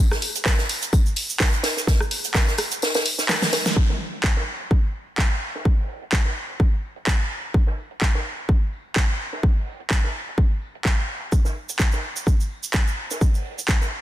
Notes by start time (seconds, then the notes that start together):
0.11 cross-stick, snare, shaker
0.22 open hi-hat, tambourine
0.35 closed hi-hat, shaker
0.46 kick, snare, clap, tambourine, shaker
0.58 snare, shaker
0.69 open hi-hat, tambourine
0.82 closed hi-hat, shaker
0.93 kick, tambourine, shaker
1.06 shaker
1.16 open hi-hat, tambourine
1.29 shaker
1.40 kick, snare, clap, tambourine, shaker
1.52 closed hi-hat, shaker
1.63 snare, open hi-hat, tambourine
1.77 snare, shaker
1.87 kick, snare, tambourine, shaker
2.01 cross-stick, shaker
2.11 open hi-hat, tambourine
2.24 closed hi-hat, shaker
2.35 kick, snare, clap, tambourine, shaker
2.48 snare, shaker
2.58 cross-stick, open hi-hat, tambourine
2.71 closed hi-hat, shaker
2.82 snare, tambourine, shaker
2.94 snare, tambourine, shaker
3.06 open hi-hat, tambourine
3.18 snare, shaker
3.29 snare, clap, tambourine, shaker
3.42 snare, tambourine, shaker
3.53 snare, open hi-hat, tambourine
3.66 snare, tambourine, shaker
3.76 kick
3.90 snare
4.13 closed hi-hat
4.24 kick, clap
4.37 snare
4.60 closed hi-hat
4.71 kick
4.95 tambourine
5.18 kick, clap
5.32 closed hi-hat
5.55 snare
5.65 kick, open hi-hat
5.89 tambourine
6.02 closed hi-hat
6.13 kick, clap
6.25 snare
6.49 closed hi-hat
6.60 kick
6.73 closed hi-hat
6.83 tambourine
6.96 closed hi-hat
7.07 kick, clap
7.54 kick, tambourine
7.67 snare
7.78 tambourine
7.91 closed hi-hat
8.02 kick, clap
8.15 snare
8.26 tambourine
8.38 closed hi-hat
8.49 kick
8.73 tambourine
8.96 kick, clap
9.09 closed hi-hat
9.33 snare
9.43 kick, open hi-hat
9.67 tambourine
9.80 closed hi-hat
9.91 kick, clap
10.04 snare
10.14 tambourine
10.28 closed hi-hat
10.38 kick, tambourine
10.50 closed hi-hat
10.62 tambourine
10.75 closed hi-hat
10.85 kick, clap
11.10 tambourine
11.32 kick, tambourine, shaker
11.45 snare, shaker
11.56 tambourine
11.69 closed hi-hat, shaker
11.79 kick, clap, shaker
11.92 snare, shaker
12.04 tambourine
12.16 closed hi-hat, shaker
12.26 kick, tambourine, shaker
12.40 shaker
12.51 tambourine
12.63 shaker
12.73 kick, clap, shaker
12.87 closed hi-hat, shaker
12.98 tambourine
13.11 snare, shaker
13.21 kick, open hi-hat, shaker
13.34 shaker
13.45 tambourine
13.58 closed hi-hat, shaker
13.68 kick, clap, shaker
13.81 snare, shaker
13.92 tambourine